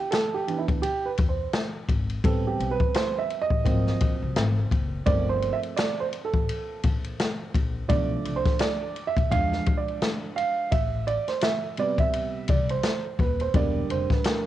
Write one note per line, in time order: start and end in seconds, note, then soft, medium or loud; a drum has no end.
0.00 0.12 G4 medium
0.11 0.36 A4 loud
0.11 snare loud
0.11 hi-hat pedal medium
0.11 ride medium
0.34 0.57 G4 medium
0.47 0.79 E3 medium
0.47 0.80 B3 soft
0.47 0.80 D4 medium
0.47 ride medium
0.58 0.64 E4 medium
0.68 0.80 D2 medium
0.68 kick medium
0.68 ride soft
0.82 1.07 G4 loud
0.82 ride medium
1.05 1.11 B4 medium
1.17 1.46 E2 medium
1.17 kick loud
1.17 ride medium
1.29 1.62 C5 medium
1.53 snare loud
1.53 hi-hat pedal medium
1.53 ride medium
1.88 2.16 G#1 medium
1.88 kick medium
1.88 ride medium
2.09 ride soft
2.23 2.52 A1 loud
2.23 3.61 G3 medium
2.23 3.61 B3 medium
2.23 3.62 C4 medium
2.23 2.49 A4 medium
2.23 kick loud
2.23 ride medium
2.47 2.72 G4 medium
2.60 2.76 B1 medium
2.60 ride medium
2.71 2.96 B4 medium
2.80 kick medium
2.94 3.19 C5 loud
2.94 snare loud
2.94 hi-hat pedal medium
2.94 ride medium
3.18 3.43 E5 loud
3.30 ride soft
3.42 4.08 D#5 loud
3.50 3.62 A1 medium
3.50 kick medium
3.64 3.93 G#1 medium
3.64 5.02 F3 medium
3.64 5.02 F#3 soft
3.64 5.02 A#3 medium
3.64 5.03 C4 medium
3.64 kick medium
3.64 ride medium
3.86 snare soft
4.00 4.17 A#1 medium
4.00 kick medium
4.00 ride medium
4.22 4.33 C2 medium
4.36 4.64 G#1 loud
4.36 snare loud
4.36 hi-hat pedal medium
4.36 ride medium
4.71 4.99 F#1 medium
4.71 kick medium
4.71 ride medium
5.06 5.50 G1 loud
5.06 7.85 F3 medium
5.06 7.85 A3 medium
5.06 7.85 A#3 medium
5.06 7.85 C4 medium
5.06 5.28 D5 loud
5.06 kick loud
5.06 ride medium
5.29 5.54 C5 medium
5.42 ride medium
5.53 5.58 E5 loud
5.63 ride soft
5.77 5.99 D5 loud
5.77 snare loud
5.77 hi-hat pedal medium
5.77 ride medium
6.00 6.06 C5 medium
6.13 ride medium
6.25 6.91 A4 medium
6.34 6.45 A1 medium
6.34 kick medium
6.49 ride medium
6.84 7.11 A#1 medium
6.84 kick medium
6.84 ride medium
7.04 ride soft
7.20 snare loud
7.20 hi-hat pedal medium
7.20 ride medium
7.55 7.82 A#1 medium
7.55 kick medium
7.55 ride medium
7.88 8.17 B1 loud
7.88 8.91 F3 medium
7.88 8.91 A3 medium
7.88 8.91 D4 medium
7.88 8.38 D5 loud
7.88 kick loud
7.88 ride medium
8.25 8.41 C2 medium
8.25 ride medium
8.36 8.60 C5 medium
8.46 kick loud
8.46 snare soft
8.46 ride soft
8.59 9.08 D5 loud
8.59 snare loud
8.59 hi-hat pedal medium
8.59 ride medium
8.96 ride medium
9.07 9.31 E5 loud
9.16 9.28 B1 medium
9.16 kick medium
9.16 ride soft
9.30 9.59 E2 loud
9.30 10.67 F3 medium
9.30 10.68 G#3 medium
9.30 10.68 D4 medium
9.30 9.75 F5 loud
9.30 kick medium
9.30 ride medium
9.52 snare soft
9.66 kick loud
9.66 ride medium
9.77 10.10 D5 medium
9.88 ride soft
10.02 snare loud
10.02 hi-hat pedal medium
10.02 ride medium
10.36 10.69 F5 medium
10.36 ride medium
10.72 11.15 A1 loud
10.72 11.08 E5 loud
10.72 kick loud
10.72 ride medium
11.07 11.28 D5 loud
11.07 ride medium
11.28 11.42 C5 medium
11.28 snare soft
11.28 ride soft
11.41 11.75 E5 loud
11.41 snare loud
11.41 hi-hat pedal medium
11.41 ride medium
11.77 12.80 C3 medium
11.77 12.80 G3 medium
11.77 12.80 B3 medium
11.77 11.98 D5 loud
11.77 ride medium
11.98 12.10 B1 medium
11.98 12.46 E5 loud
11.98 kick medium
11.98 ride soft
12.13 ride medium
12.48 12.76 C2 medium
12.48 12.70 D5 medium
12.48 kick loud
12.48 ride medium
12.69 13.21 C5 medium
12.69 ride soft
12.83 snare medium
12.83 hi-hat pedal medium
12.83 ride medium
13.19 13.46 D#1 loud
13.19 13.41 B4 medium
13.19 kick medium
13.19 ride medium
13.40 13.55 C5 medium
13.40 ride soft
13.54 13.81 E1 loud
13.54 14.46 D3 medium
13.54 14.46 G3 medium
13.54 14.46 A#3 medium
13.54 13.88 D5 loud
13.54 kick loud
13.54 ride medium
13.90 14.06 F1 medium
13.90 14.09 C5 medium
13.90 ride medium
14.10 14.26 B4 medium
14.10 kick medium
14.10 snare soft
14.24 14.46 A#4 medium
14.24 snare loud
14.24 hi-hat pedal medium
14.24 ride medium